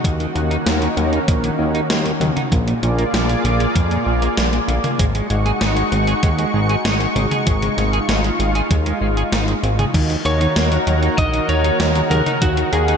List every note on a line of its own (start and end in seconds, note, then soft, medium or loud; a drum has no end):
0.00 2.48 F#4 medium
0.04 0.27 D#2 loud
0.04 0.09 D#3 medium
0.04 2.49 D#3 medium
0.04 2.49 A#3 medium
0.04 2.49 C#4 medium
0.04 kick loud
0.04 closed hi-hat medium
0.20 0.32 D#3 medium
0.20 closed hi-hat soft
0.35 0.57 D#2 loud
0.35 0.40 D#3 medium
0.35 closed hi-hat medium
0.51 0.55 D#4 medium
0.51 closed hi-hat soft
0.66 0.88 D#2 medium
0.66 0.78 A#3 loud
0.66 snare loud
0.66 closed hi-hat medium
0.82 0.86 D#3 medium
0.82 closed hi-hat soft
0.97 1.19 D#2 loud
0.97 1.02 F#3 medium
0.97 closed hi-hat medium
1.13 1.17 D#4 loud
1.13 closed hi-hat soft
1.28 1.50 A#1 loud
1.28 1.33 D#3 medium
1.28 kick loud
1.28 closed hi-hat medium
1.44 1.55 D#3 medium
1.44 closed hi-hat soft
1.59 1.81 D#2 medium
1.59 1.64 D#3 medium
1.74 1.79 D#4 loud
1.74 closed hi-hat soft
1.90 2.12 D#2 medium
1.90 2.02 A#3 medium
1.90 snare loud
1.90 closed hi-hat medium
2.05 2.10 D#3 medium
2.05 closed hi-hat soft
2.20 2.32 D#2 loud
2.20 2.26 F#3 medium
2.20 closed hi-hat medium
2.20 mid tom medium
2.36 2.41 D#4 loud
2.36 closed hi-hat soft
2.36 mid tom medium
2.52 2.74 A#1 loud
2.52 2.56 A#2 medium
2.52 4.97 A#3 medium
2.52 4.97 F4 medium
2.52 4.97 G#4 medium
2.52 4.97 D5 medium
2.52 kick loud
2.52 closed hi-hat medium
2.67 2.79 A#2 medium
2.67 closed hi-hat soft
2.83 3.05 A#1 loud
2.83 2.87 A#2 medium
2.83 closed hi-hat medium
2.98 3.03 A#3 medium
2.98 closed hi-hat soft
3.14 3.36 A#1 medium
3.14 3.25 F3 medium
3.14 snare loud
3.14 closed hi-hat medium
3.29 3.34 A#2 medium
3.29 closed hi-hat soft
3.44 3.67 A#1 loud
3.44 3.49 D3 medium
3.44 closed hi-hat medium
3.60 3.65 A#3 loud
3.60 closed hi-hat soft
3.76 3.98 F2 loud
3.76 3.80 A#2 medium
3.76 kick loud
3.76 closed hi-hat medium
3.91 4.03 A#2 medium
3.91 closed hi-hat soft
4.06 4.29 A#1 medium
4.06 4.11 A#2 medium
4.22 4.27 A#3 loud
4.22 closed hi-hat soft
4.37 4.60 A#1 medium
4.37 4.49 F3 medium
4.37 snare loud
4.37 closed hi-hat medium
4.53 4.58 A#2 medium
4.53 closed hi-hat soft
4.68 4.79 A#1 medium
4.68 4.73 D3 medium
4.68 closed hi-hat medium
4.84 4.89 A#3 loud
4.84 closed hi-hat soft
4.84 mid tom loud
4.99 5.21 G#1 loud
4.99 9.90 G#3 medium
4.99 5.04 G#3 medium
4.99 9.90 D#4 medium
4.99 7.44 F#4 medium
4.99 9.90 C#6 medium
4.99 kick loud
4.99 closed hi-hat medium
5.15 5.26 G#3 medium
5.15 closed hi-hat soft
5.30 5.52 G#1 loud
5.30 5.35 G#3 medium
5.30 closed hi-hat medium
5.46 5.50 G#4 loud
5.46 closed hi-hat soft
5.61 5.83 G#1 medium
5.61 5.73 D#4 medium
5.61 snare loud
5.61 closed hi-hat medium
5.77 5.81 G#3 medium
5.77 closed hi-hat soft
5.92 6.14 G#1 loud
5.92 5.97 C4 medium
5.92 closed hi-hat medium
6.07 6.12 G#4 loud
6.07 closed hi-hat soft
6.23 6.45 D#2 loud
6.23 6.28 G#3 medium
6.23 kick loud
6.23 closed hi-hat medium
6.39 6.50 G#3 medium
6.39 closed hi-hat soft
6.54 6.76 G#1 medium
6.54 6.59 G#3 medium
6.69 6.74 G#4 loud
6.69 closed hi-hat soft
6.85 7.07 G#1 medium
6.85 6.97 D#4 loud
6.85 snare loud
6.85 closed hi-hat medium
7.00 7.05 G#3 medium
7.00 closed hi-hat soft
7.16 7.27 G#1 medium
7.16 7.20 C4 medium
7.16 closed hi-hat medium
7.16 mid tom medium
7.31 7.36 G#4 loud
7.31 closed hi-hat soft
7.31 mid tom medium
7.47 7.69 G#1 loud
7.47 7.51 G#3 medium
7.47 9.92 F4 medium
7.47 kick loud
7.47 closed hi-hat medium
7.62 7.74 G#3 medium
7.62 closed hi-hat soft
7.62 mid tom medium
7.77 8.00 G#1 loud
7.77 7.82 G#3 medium
7.77 snare soft
7.77 closed hi-hat medium
7.93 7.98 G#4 medium
7.93 closed hi-hat soft
8.08 8.31 G#1 medium
8.08 8.20 D#4 loud
8.08 snare loud
8.08 closed hi-hat medium
8.24 8.29 G#3 medium
8.24 closed hi-hat soft
8.39 8.62 G#1 medium
8.39 8.44 C4 medium
8.39 closed hi-hat medium
8.55 8.60 G#4 loud
8.55 closed hi-hat soft
8.71 8.93 D#2 loud
8.71 8.75 G#3 medium
8.71 kick loud
8.71 closed hi-hat medium
8.86 8.98 G#3 medium
8.86 closed hi-hat soft
9.01 9.23 G#1 medium
9.01 9.06 G#3 medium
9.17 9.22 G#4 loud
9.17 closed hi-hat soft
9.32 9.54 G#1 medium
9.32 9.44 D#4 loud
9.32 snare loud
9.32 closed hi-hat medium
9.48 9.53 G#3 medium
9.48 closed hi-hat soft
9.63 9.85 G#1 loud
9.63 9.68 C4 medium
9.63 closed hi-hat medium
9.79 9.83 G#4 loud
9.79 closed hi-hat soft
9.79 mid tom medium
9.94 10.16 D#2 loud
9.94 10.12 D#3 medium
9.94 9.99 D#3 medium
9.94 12.97 D#3 medium
9.94 10.12 A#3 medium
9.94 10.12 D#4 medium
9.94 12.97 D#4 medium
9.94 10.12 F#4 medium
9.94 12.97 F#4 medium
9.94 12.97 A#4 medium
9.94 kick loud
9.94 closed hi-hat loud
9.94 crash loud
10.10 10.21 D#3 medium
10.10 closed hi-hat soft
10.25 10.47 D#2 loud
10.25 10.30 D#3 medium
10.25 11.21 C#5 loud
10.25 closed hi-hat medium
10.41 10.83 D#3 medium
10.41 10.83 A#3 medium
10.41 10.45 D#4 loud
10.41 10.83 D#4 medium
10.41 10.83 F#4 medium
10.41 closed hi-hat soft
10.56 10.78 D#2 medium
10.56 10.68 A#3 loud
10.56 snare loud
10.56 closed hi-hat medium
10.72 10.76 D#3 medium
10.72 closed hi-hat soft
10.87 11.09 D#2 loud
10.87 11.30 D#3 medium
10.87 10.92 F#3 medium
10.87 11.30 A#3 medium
10.87 11.30 D#4 medium
10.87 11.30 F#4 loud
10.87 closed hi-hat medium
11.03 11.07 D#4 loud
11.03 closed hi-hat soft
11.18 11.40 A#1 loud
11.18 11.23 D#3 medium
11.18 11.47 D#5 loud
11.18 kick loud
11.18 closed hi-hat medium
11.33 11.45 D#3 medium
11.33 11.51 D#3 medium
11.33 11.51 A#3 medium
11.33 11.51 D#4 medium
11.33 11.51 A#4 medium
11.33 closed hi-hat soft
11.49 11.71 D#2 loud
11.49 11.54 D#3 medium
11.49 12.10 C#5 loud
11.49 closed hi-hat soft
11.64 11.92 D#3 medium
11.64 11.92 A#3 medium
11.64 11.69 D#4 loud
11.64 11.92 D#4 medium
11.64 11.92 F#4 loud
11.64 closed hi-hat soft
11.80 12.02 D#2 medium
11.80 11.91 A#3 loud
11.80 snare loud
11.80 closed hi-hat loud
11.95 12.00 D#3 medium
11.95 12.23 D#3 medium
11.95 12.23 A#3 medium
11.95 12.23 D#4 medium
11.95 12.23 G#4 loud
11.95 closed hi-hat soft
12.11 12.22 D#2 medium
12.11 12.15 F#3 medium
12.11 12.40 A#4 medium
12.11 closed hi-hat medium
12.11 mid tom medium
12.26 12.31 D#4 medium
12.26 closed hi-hat soft
12.26 mid tom medium
12.42 12.64 D#2 loud
12.42 12.46 D#3 medium
12.42 12.59 D#3 medium
12.42 12.59 A#3 medium
12.42 12.59 D#4 medium
12.42 12.59 F#4 medium
12.42 12.71 F#4 medium
12.42 kick loud
12.42 closed hi-hat loud
12.57 12.69 D#3 medium
12.57 closed hi-hat soft
12.72 12.95 D#2 loud
12.72 12.77 D#3 medium
12.72 12.97 G#4 medium
12.72 closed hi-hat medium
12.88 12.97 D#3 medium
12.88 12.97 A#3 medium
12.88 12.93 D#4 loud
12.88 12.97 D#4 medium
12.88 12.97 F#4 medium
12.88 closed hi-hat soft